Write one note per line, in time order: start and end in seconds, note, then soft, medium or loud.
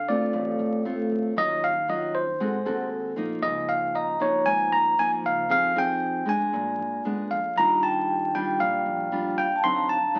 0.00 0.30 D2 medium
0.00 0.31 D3 medium
0.00 0.21 F5 medium
0.09 0.82 A3 medium
0.09 0.82 C4 medium
0.09 0.82 F4 medium
0.09 0.82 D5 medium
0.33 0.58 A1 loud
0.33 1.35 A2 medium
0.59 1.08 A1 medium
0.85 1.33 A3 medium
0.85 1.33 C4 medium
0.85 1.33 F4 medium
1.11 1.35 D2 medium
1.36 2.37 D#2 medium
1.36 2.38 D#3 medium
1.36 1.70 F#3 medium
1.36 1.71 C#4 medium
1.36 1.71 F4 medium
1.36 1.64 D#5 loud
1.64 1.88 F5 loud
1.88 2.23 F#3 soft
1.88 2.24 C#4 medium
1.88 2.24 F4 medium
1.88 2.16 D#5 medium
2.15 2.88 C5 medium
2.40 2.65 G#1 loud
2.40 3.16 G#3 medium
2.40 2.56 C4 medium
2.40 2.56 F#4 medium
2.40 2.56 A4 medium
2.65 3.14 D#2 loud
2.65 3.14 C4 medium
2.65 3.14 F#4 medium
2.65 3.14 A4 medium
3.16 3.41 A#1 medium
3.16 4.16 F3 medium
3.16 4.17 A#3 medium
3.16 4.17 D#4 medium
3.42 4.43 C#2 loud
3.42 4.44 C#3 medium
3.42 3.70 D#5 loud
3.69 3.96 F5 medium
3.95 4.22 D#5 medium
3.95 4.60 A#5 medium
4.19 4.94 F3 medium
4.19 4.94 A#3 medium
4.19 4.94 D#4 medium
4.19 4.48 C#5 medium
4.46 4.71 G#1 loud
4.46 5.48 G#2 medium
4.46 4.73 G#5 loud
4.72 5.21 G#1 medium
4.72 5.00 A#5 loud
4.98 5.48 F3 medium
4.98 5.48 A#3 medium
4.98 5.48 D#4 medium
4.98 5.11 G#5 loud
5.24 5.48 C#2 medium
5.24 5.50 F5 medium
5.49 6.50 F2 loud
5.49 6.25 F3 medium
5.49 5.72 C4 medium
5.49 5.72 D#4 medium
5.49 5.72 G#4 medium
5.49 5.78 F5 loud
5.76 6.24 C4 medium
5.76 6.24 D#4 medium
5.76 6.24 G#4 medium
5.76 6.31 G5 loud
6.25 7.00 G#3 medium
6.25 7.01 D4 medium
6.25 7.02 G#5 medium
6.53 6.78 A#1 loud
6.53 7.54 A#2 medium
6.79 7.02 A#2 medium
7.05 7.28 G#2 medium
7.05 7.39 G#3 medium
7.05 7.39 B3 medium
7.05 7.39 D4 soft
7.30 7.54 F2 medium
7.30 7.58 F5 medium
7.56 8.56 D#2 medium
7.56 8.58 D#3 medium
7.56 8.31 G3 medium
7.56 8.31 D4 medium
7.56 8.31 F4 medium
7.56 7.84 A#5 loud
7.83 8.47 G5 medium
7.83 8.36 A5 medium
8.35 9.08 G3 medium
8.35 9.08 D4 medium
8.35 9.08 F4 medium
8.35 8.59 G5 medium
8.60 8.84 A#1 loud
8.60 9.61 A#2 soft
8.60 9.40 F5 medium
8.86 9.34 A#1 medium
9.12 9.45 G3 medium
9.12 9.45 D4 medium
9.12 9.46 F4 medium
9.37 9.61 D#2 medium
9.37 9.86 F5 soft
9.37 9.65 G5 medium
9.56 10.01 A5 soft
9.63 10.20 D2 medium
9.63 10.20 D3 medium
9.63 9.97 F#3 medium
9.63 9.97 C4 medium
9.63 9.97 D#4 medium
9.63 9.88 C6 loud
9.73 10.17 A#5 soft
9.89 10.20 A5 medium
10.14 10.20 F#3 medium
10.14 10.20 C4 medium
10.14 10.20 D#4 medium